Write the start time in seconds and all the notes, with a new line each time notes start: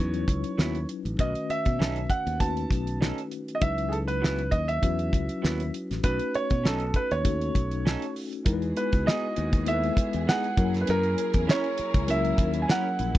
Already playing: E2 F#3 C#4 D#4 C#5
0.00 E4 B4
0.14 closed hi-hat
0.28 C#2, kick, closed hi-hat
0.44 closed hi-hat
0.58 D#2 F#3 B3 E4, snare
0.75 closed hi-hat
0.89 closed hi-hat
1.05 A1, closed hi-hat
1.18 B1 D#3 A3 C#4 F#4 B4 D#5, kick, closed hi-hat
1.35 closed hi-hat
1.50 E5, muted fingered electric bass stroke, closed hi-hat
1.65 B2, kick, closed hi-hat
1.79 B1 C#4 D#4 A4, snare
1.96 closed hi-hat
2.10 F#5, kick, closed hi-hat
2.27 D#2, closed hi-hat
2.40 A3 C#4 D#4 F#4 B4 A5, kick, closed hi-hat
2.57 closed hi-hat
2.71 B1, kick, closed hi-hat
2.87 closed hi-hat
3.01 C#4 D#4 A4, snare
3.18 closed hi-hat
3.31 closed hi-hat
3.48 closed hi-hat
3.55 D#5
3.61 C#2 F#3 C#4 D#4 E4 B4 E5, kick, closed hi-hat
3.78 closed hi-hat
3.89 G#4 A4, closed hi-hat
4.08 B4, closed hi-hat
4.21 F#3 B3 E4, snare
4.39 closed hi-hat
4.51 D#2 D#5, kick, closed hi-hat
4.68 E5, closed hi-hat
4.82 E2 F#3 C#4 E4 F#4 B4, kick, closed hi-hat
4.99 closed hi-hat
5.13 C#2, kick, closed hi-hat
5.29 closed hi-hat
5.42 D#2 F#3 B3 E4, snare
5.60 closed hi-hat
5.74 closed hi-hat
5.91 A1, snare, closed hi-hat
6.03 B1 A3 C#4 D#4 F#4 B4, kick, closed hi-hat
6.20 closed hi-hat
6.35 C#5, muted fingered electric bass stroke, closed hi-hat
6.50 B2, kick, closed hi-hat
6.64 B1 C#4 D#4 A4, snare
6.80 closed hi-hat
6.94 B4, kick, closed hi-hat
7.11 D#2 C#5, closed hi-hat
7.24 A3 C#4 D#4 F#4 A4, kick, closed hi-hat
7.41 closed hi-hat
7.55 B1, kick, closed hi-hat
7.71 closed hi-hat
7.85 C#4 D#4 A4, snare
8.02 closed hi-hat
8.16 open hi-hat
8.33 closed hi-hat
8.45 E2 G#3 B3 D#4 E4 F#4 G#4 A#4, kick, closed hi-hat
8.53 B4
8.62 closed hi-hat
8.77 B4, closed hi-hat
8.92 C#2, kick, closed hi-hat
9.06 B3 D#4 G#4 D#5, snare
9.36 D#2, closed hi-hat
9.53 kick, closed hi-hat
9.66 G#3 B3 E4 A4 E5, closed hi-hat
9.74 B4
9.83 closed hi-hat
9.97 muted fingered electric bass stroke, kick, closed hi-hat
10.13 E2, closed hi-hat
10.27 B3 D#4 G#4 F#5, snare
10.44 closed hi-hat
10.56 F#2 F#3 A#3 C#4 E4 A#4, kick, closed hi-hat
10.74 snare, closed hi-hat
10.81 B4
10.87 F#2 A#4, closed hi-hat
11.03 closed hi-hat
11.18 closed hi-hat
11.34 E2, kick, closed hi-hat
11.47 C#4 E4 A#4 C#5, snare
11.64 closed hi-hat
11.78 muted fingered electric bass stroke, closed hi-hat
11.94 C#2, kick, closed hi-hat
12.07 F#3 A#3 C#4 E4 A#4 E5, closed hi-hat
12.25 closed hi-hat
12.38 D#2, kick, closed hi-hat
12.54 closed hi-hat
12.62 G#5
12.68 C#4 E4 A#4 F#5, snare
12.99 A#1, closed hi-hat
13.15 kick